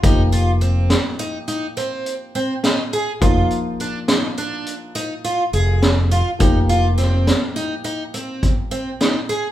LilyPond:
<<
  \new Staff \with { instrumentName = "Twelve-string acoustic guitar" } { \time 11/8 \key c \minor \tempo 4 = 104 ees'8 f'8 c'4 ees'8 ees'8 c'4 c'8 ees'8 aes'8 | f'4 d'8 ees'8 d'4 ees'8 f'8 aes'4 f'8 | ees'8 f'8 c'4 ees'8 ees'8 c'4 c'8 ees'8 aes'8 | }
  \new Staff \with { instrumentName = "Grand piano" } { \time 11/8 \key c \minor <f bes ees' g'>1~ <f bes ees' g'>4. | <f bes ees' f'>1~ <f bes ees' f'>4. | <f bes ees' g'>1~ <f bes ees' g'>4. | }
  \new Staff \with { instrumentName = "Fingered electric bass" } { \clef bass \time 11/8 \key c \minor f,,2 r2. r8 | f,,8 r2. r8 f,,4. | f,,2 r2. r8 | }
  \new DrumStaff \with { instrumentName = "Drums" } \drummode { \time 11/8 <hh bd>8 hh8 hh8 <hh sn>8 hh8 hh8 hh8 hh8 hh8 <hh sn>8 hh8 | <hh bd>8 hh8 hh8 <hh sn>8 hh8 hh8 hh8 hh8 hh8 <hh sn>8 hh8 | <hh bd>8 hh8 <hh sn>8 <hh sn>8 hh8 hh8 hh8 <hh bd>8 hh8 <hh sn>8 hh8 | }
>>